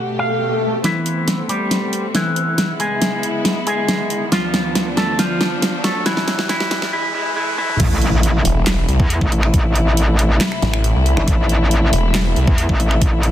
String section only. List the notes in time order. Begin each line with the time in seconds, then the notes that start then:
Already playing: B2 A3 G4
0.84 A3 B3 C4
2.58 G#3 E4
4.32 D2 F3 D4
6.06 C3 F#3
7.80 C3 A3 E4